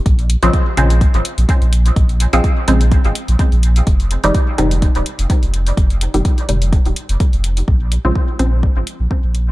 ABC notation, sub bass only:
X:1
M:4/4
L:1/16
Q:"Swing 16ths" 1/4=126
K:Bbm
V:1 name="Sub bass" clef=bass
B,,,2 z B,,, z2 B,,,2 z A,,, z B,,, z B,,,2 z | B,,,2 z B,,, z2 B,,,2 z A,,, z B,,, z B,,,2 z | F,,,2 z F,,, z2 F,,,2 z E,,, z F,,, z F,,,2 z | F,,,2 z F,,, z2 F,,,2 z E,,, z F,,, z F,,,2 z |
B,,,2 z B,,, z2 B,,,2 z A,,, z B,,, z B,,,2 z |]